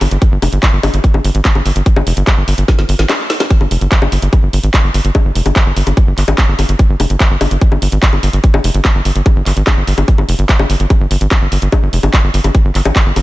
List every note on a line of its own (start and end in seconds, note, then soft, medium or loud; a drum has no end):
0.01 0.07 G1 loud
0.01 open hi-hat loud
0.01 high bongo soft
0.11 0.18 G1 medium
0.11 closed hi-hat medium
0.22 kick loud
0.22 closed hi-hat medium
0.32 0.38 G1 medium
0.42 0.48 F1 loud
0.42 open hi-hat loud
0.42 high bongo soft
0.53 0.59 G1 loud
0.53 closed hi-hat medium
0.63 kick loud
0.63 clap loud
0.63 closed hi-hat medium
0.73 0.79 G1 medium
0.83 0.89 G1 loud
0.83 open hi-hat loud
0.83 high bongo medium
0.94 1.00 G1 medium
0.94 closed hi-hat medium
1.04 kick loud
1.04 closed hi-hat medium
1.14 1.20 G1 medium
1.14 high bongo soft
1.24 1.31 G1 loud
1.24 open hi-hat loud
1.35 1.41 G#1 medium
1.35 closed hi-hat medium
1.45 kick loud
1.45 clap loud
1.45 closed hi-hat medium
1.55 1.61 G1 medium
1.55 high bongo soft
1.66 1.72 G1 loud
1.66 open hi-hat loud
1.76 1.82 G1 medium
1.76 closed hi-hat medium
1.86 kick loud
1.86 closed hi-hat medium
1.96 2.02 G1 medium
1.96 high bongo medium
2.07 2.13 F1 loud
2.07 open hi-hat loud
2.17 2.23 G1 loud
2.17 closed hi-hat medium
2.27 kick loud
2.27 clap loud
2.27 closed hi-hat medium
2.27 high bongo soft
2.37 2.44 G1 medium
2.48 2.54 G1 loud
2.48 open hi-hat loud
2.58 2.64 G1 medium
2.58 closed hi-hat medium
2.68 kick loud
2.68 snare medium
2.68 closed hi-hat medium
2.68 high bongo soft
2.79 2.85 G1 medium
2.79 snare medium
2.89 2.95 G1 loud
2.89 open hi-hat loud
2.99 3.05 G#1 medium
2.99 snare medium
2.99 closed hi-hat medium
3.09 snare medium
3.09 clap loud
3.09 closed hi-hat medium
3.09 high bongo medium
3.30 snare loud
3.30 open hi-hat loud
3.40 snare medium
3.40 closed hi-hat medium
3.40 high bongo soft
3.50 kick loud
3.50 closed hi-hat medium
3.61 3.67 G1 medium
3.61 high bongo soft
3.71 3.77 F1 loud
3.71 open hi-hat loud
3.81 3.87 G1 medium
3.81 closed hi-hat medium
3.92 kick loud
3.92 clap loud
3.92 closed hi-hat medium
4.02 4.08 G1 medium
4.02 high bongo medium
4.12 4.18 G1 loud
4.12 open hi-hat loud
4.22 4.28 G1 medium
4.22 closed hi-hat medium
4.33 kick loud
4.33 closed hi-hat medium
4.33 high bongo soft
4.43 4.49 G1 medium
4.53 4.59 G1 loud
4.53 open hi-hat loud
4.63 4.70 G#1 medium
4.63 closed hi-hat medium
4.74 kick loud
4.74 clap loud
4.74 closed hi-hat medium
4.74 high bongo soft
4.84 4.90 G1 medium
4.94 5.00 G1 loud
4.94 open hi-hat loud
5.05 5.11 G1 medium
5.05 closed hi-hat medium
5.15 kick loud
5.15 closed hi-hat medium
5.15 high bongo medium
5.25 5.31 G1 medium
5.35 5.41 F1 loud
5.35 open hi-hat loud
5.46 5.52 G1 loud
5.46 closed hi-hat medium
5.46 high bongo soft
5.56 kick loud
5.56 clap loud
5.56 closed hi-hat medium
5.66 5.72 G1 medium
5.76 5.83 G1 loud
5.76 open hi-hat loud
5.87 5.93 G1 medium
5.87 closed hi-hat medium
5.87 high bongo soft
5.97 kick loud
5.97 closed hi-hat medium
6.07 6.13 G1 medium
6.18 6.24 G1 loud
6.18 clap soft
6.18 open hi-hat loud
6.28 6.34 G#1 loud
6.28 closed hi-hat medium
6.28 high bongo medium
6.38 kick loud
6.38 clap loud
6.38 closed hi-hat medium
6.48 6.55 G1 medium
6.59 6.65 G1 loud
6.59 open hi-hat loud
6.59 high bongo soft
6.69 6.75 G1 medium
6.69 closed hi-hat medium
6.79 kick loud
6.79 closed hi-hat medium
6.90 6.96 G1 medium
7.00 7.06 F1 loud
7.00 open hi-hat loud
7.00 high bongo soft
7.10 7.16 G1 medium
7.10 closed hi-hat medium
7.20 kick loud
7.20 clap loud
7.20 closed hi-hat medium
7.31 7.37 G1 medium
7.41 7.47 G1 loud
7.41 open hi-hat loud
7.41 high bongo medium
7.51 7.57 G1 medium
7.51 closed hi-hat medium
7.61 kick loud
7.61 closed hi-hat medium
7.72 7.78 G1 medium
7.72 high bongo soft
7.82 7.88 G1 loud
7.82 open hi-hat loud
7.92 7.98 G#1 loud
7.92 closed hi-hat medium
8.03 kick loud
8.03 clap loud
8.03 closed hi-hat medium
8.13 8.19 G1 medium
8.13 high bongo soft
8.23 8.29 G1 loud
8.23 open hi-hat loud
8.33 8.39 G1 medium
8.33 closed hi-hat medium
8.44 kick loud
8.44 closed hi-hat medium
8.54 8.60 G1 medium
8.54 high bongo medium
8.64 8.70 F1 loud
8.64 open hi-hat loud
8.74 8.81 G1 loud
8.74 closed hi-hat medium
8.85 kick loud
8.85 clap loud
8.85 closed hi-hat medium
8.85 high bongo soft
8.95 9.01 G1 medium
9.05 9.11 G1 loud
9.05 open hi-hat loud
9.16 9.22 G1 medium
9.16 closed hi-hat medium
9.26 kick loud
9.26 closed hi-hat medium
9.26 high bongo soft
9.36 9.42 G1 medium
9.46 9.52 G1 loud
9.46 clap soft
9.46 open hi-hat loud
9.57 9.63 G#1 medium
9.57 closed hi-hat medium
9.67 kick loud
9.67 clap loud
9.67 closed hi-hat medium
9.67 high bongo medium
9.77 9.83 G1 medium
9.87 9.94 G1 loud
9.87 open hi-hat loud
9.98 10.04 G1 medium
9.98 closed hi-hat medium
9.98 high bongo soft
10.08 kick loud
10.08 closed hi-hat medium
10.18 10.24 G1 medium
10.18 high bongo soft
10.29 10.35 F1 loud
10.29 open hi-hat loud
10.39 10.45 G1 medium
10.39 closed hi-hat medium
10.49 kick loud
10.49 clap loud
10.49 closed hi-hat medium
10.59 10.65 G1 medium
10.59 high bongo medium
10.70 10.76 G1 loud
10.70 open hi-hat loud
10.80 10.86 G1 medium
10.80 closed hi-hat medium
10.90 kick loud
10.90 closed hi-hat medium
10.90 high bongo soft
11.00 11.07 G1 medium
11.11 11.17 G1 loud
11.11 open hi-hat loud
11.21 11.27 G#1 loud
11.21 closed hi-hat medium
11.31 kick loud
11.31 clap loud
11.31 closed hi-hat medium
11.31 high bongo soft
11.42 11.48 G1 medium
11.52 11.58 G1 loud
11.52 open hi-hat loud
11.62 11.68 G1 medium
11.62 closed hi-hat medium
11.72 kick loud
11.72 closed hi-hat medium
11.72 high bongo medium
11.83 11.89 G1 medium
11.93 11.99 F1 loud
11.93 open hi-hat loud
12.03 12.09 G1 loud
12.03 closed hi-hat medium
12.03 high bongo soft
12.13 kick loud
12.13 clap loud
12.13 closed hi-hat medium
12.24 12.30 G1 medium
12.34 12.40 G1 loud
12.34 open hi-hat loud
12.44 12.50 G1 medium
12.44 closed hi-hat medium
12.44 high bongo soft
12.55 kick loud
12.55 closed hi-hat medium
12.65 12.71 G1 medium
12.75 12.81 G1 loud
12.75 clap soft
12.75 open hi-hat loud
12.85 12.92 G#1 medium
12.85 closed hi-hat medium
12.85 high bongo medium
12.96 kick loud
12.96 clap loud
12.96 closed hi-hat medium
13.06 13.12 G1 medium
13.16 13.22 G1 loud
13.16 open hi-hat loud
13.16 high bongo soft